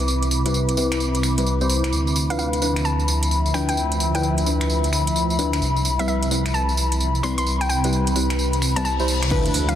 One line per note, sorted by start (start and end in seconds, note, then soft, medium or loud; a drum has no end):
0.00 1.91 C2 medium
0.00 1.93 C4 medium
0.00 1.93 E4 medium
0.00 9.31 B5 medium
0.00 1.94 D6 medium
0.08 tambourine soft
0.23 closed hi-hat soft
0.23 tambourine soft
0.31 tambourine medium
0.46 0.75 G3 medium
0.46 0.75 C4 medium
0.46 0.75 E4 medium
0.46 0.75 B4 loud
0.46 closed hi-hat medium
0.46 tambourine soft
0.54 tambourine soft
0.69 closed hi-hat soft
0.69 tambourine soft
0.77 1.35 G3 medium
0.77 1.35 C4 medium
0.77 1.35 E4 medium
0.77 1.35 B4 medium
0.77 tambourine medium
0.92 finger snap medium
0.92 closed hi-hat medium
0.92 tambourine soft
1.00 tambourine soft
1.15 closed hi-hat soft
1.15 tambourine soft
1.23 finger snap soft
1.23 tambourine medium
1.38 1.57 G3 medium
1.38 1.57 C4 medium
1.38 1.57 E4 medium
1.38 1.57 B4 medium
1.38 closed hi-hat medium
1.38 tambourine soft
1.46 tambourine soft
1.61 1.92 G3 medium
1.61 1.92 C4 medium
1.61 1.92 E4 medium
1.61 1.92 C5 medium
1.61 tambourine soft
1.69 tambourine medium
1.84 finger snap soft
1.84 closed hi-hat medium
1.84 tambourine soft
1.92 5.60 D2 medium
1.92 5.62 F3 loud
1.92 9.32 B5 medium
1.92 tambourine soft
2.07 tambourine soft
2.16 tambourine medium
2.30 2.60 F3 medium
2.30 2.60 D4 medium
2.30 2.60 E4 medium
2.30 2.60 B4 medium
2.30 2.36 F5 medium
2.30 closed hi-hat medium
2.30 tambourine soft
2.39 6.65 E5 medium
2.39 2.48 F5 medium
2.39 tambourine soft
2.53 closed hi-hat soft
2.53 tambourine soft
2.62 3.52 F3 medium
2.62 3.52 D4 medium
2.62 3.52 E4 medium
2.62 3.52 B4 medium
2.62 tambourine medium
2.76 finger snap medium
2.76 closed hi-hat medium
2.76 tambourine soft
2.85 3.02 A5 medium
2.85 tambourine soft
2.99 tambourine soft
3.08 tambourine medium
3.23 closed hi-hat medium
3.23 tambourine soft
3.31 tambourine soft
3.46 tambourine soft
3.54 3.70 F3 medium
3.54 3.70 D4 medium
3.54 3.70 E4 medium
3.54 3.70 B4 medium
3.54 3.63 G5 medium
3.54 finger snap soft
3.54 tambourine medium
3.69 3.74 G5 medium
3.69 closed hi-hat medium
3.69 tambourine soft
3.77 tambourine soft
3.92 closed hi-hat soft
3.92 tambourine soft
4.00 tambourine medium
4.15 4.44 F3 medium
4.15 4.44 D4 medium
4.15 4.44 E4 medium
4.15 4.44 B4 loud
4.15 4.46 G5 medium
4.15 closed hi-hat medium
4.15 tambourine soft
4.23 tambourine soft
4.38 closed hi-hat soft
4.38 tambourine soft
4.46 5.37 F3 medium
4.46 5.37 D4 medium
4.46 5.37 E4 medium
4.46 5.37 B4 medium
4.46 tambourine medium
4.61 finger snap medium
4.61 closed hi-hat medium
4.61 tambourine soft
4.70 tambourine soft
4.84 closed hi-hat soft
4.84 tambourine soft
4.93 finger snap soft
4.93 tambourine medium
5.07 closed hi-hat medium
5.07 tambourine soft
5.16 tambourine soft
5.30 tambourine soft
5.39 5.55 F3 medium
5.39 5.55 D4 medium
5.39 5.55 E4 medium
5.39 5.55 B4 medium
5.39 tambourine medium
5.53 finger snap soft
5.53 closed hi-hat medium
5.53 tambourine soft
5.62 9.29 C2 medium
5.62 9.31 E4 medium
5.62 tambourine soft
5.76 tambourine soft
5.85 tambourine medium
5.99 6.29 G3 medium
5.99 6.29 C4 medium
5.99 6.29 E4 medium
5.99 6.29 B4 medium
5.99 6.05 E5 medium
5.99 closed hi-hat medium
5.99 tambourine soft
6.08 6.17 E5 medium
6.08 tambourine soft
6.23 closed hi-hat medium
6.23 tambourine soft
6.31 7.21 G3 medium
6.31 7.21 C4 medium
6.31 7.21 E4 medium
6.31 7.21 B4 medium
6.31 tambourine medium
6.46 9.31 C4 medium
6.46 finger snap medium
6.46 closed hi-hat medium
6.46 tambourine soft
6.54 6.71 A5 medium
6.54 tambourine soft
6.69 tambourine soft
6.77 tambourine medium
6.92 closed hi-hat medium
6.92 tambourine soft
7.00 tambourine soft
7.15 tambourine soft
7.23 7.40 G3 medium
7.23 7.40 C4 medium
7.23 7.40 E4 medium
7.23 7.40 B4 medium
7.23 7.33 C6 medium
7.23 finger snap soft
7.23 tambourine medium
7.38 7.43 C6 medium
7.38 closed hi-hat medium
7.38 tambourine soft
7.47 tambourine soft
7.61 7.66 G5 medium
7.61 closed hi-hat soft
7.61 tambourine soft
7.69 7.79 G5 medium
7.69 tambourine medium
7.84 8.14 G3 medium
7.84 8.14 C4 medium
7.84 8.14 E4 medium
7.84 8.14 B4 loud
7.84 closed hi-hat medium
7.84 tambourine soft
7.93 tambourine soft
8.07 closed hi-hat medium
8.07 tambourine soft
8.16 8.73 G3 medium
8.16 8.73 C4 medium
8.16 8.73 E4 medium
8.16 8.73 B4 medium
8.16 tambourine medium
8.30 finger snap medium
8.30 closed hi-hat medium
8.30 tambourine soft
8.39 tambourine soft
8.39 reverse cymbal medium
8.53 closed hi-hat soft
8.53 tambourine soft
8.62 finger snap soft
8.62 tambourine medium
8.76 8.96 G3 medium
8.76 8.96 C4 medium
8.76 8.96 E4 medium
8.76 8.96 B4 medium
8.76 8.82 A5 medium
8.76 closed hi-hat medium
8.76 tambourine soft
8.85 8.94 A5 medium
8.85 tambourine soft
8.99 9.30 G3 medium
8.99 9.30 C4 medium
8.99 9.30 E4 medium
8.99 9.30 C5 medium
8.99 tambourine soft
9.08 tambourine medium
9.23 finger snap soft
9.23 closed hi-hat medium
9.23 tambourine soft
9.31 9.50 D2 loud
9.31 9.63 F3 loud
9.31 9.63 D4 loud
9.31 9.63 E4 medium
9.31 9.63 B4 loud
9.31 9.75 E5 medium
9.31 kick loud
9.31 crash loud
9.31 tambourine soft
9.31 sub drop medium
9.46 closed hi-hat soft
9.46 tambourine soft
9.54 9.75 D2 medium
9.54 open hi-hat loud
9.54 tambourine medium
9.69 9.75 F3 medium
9.69 9.75 D4 medium
9.69 9.75 E4 medium
9.69 9.75 B4 loud
9.69 9.74 F5 medium
9.69 closed hi-hat medium
9.69 tambourine soft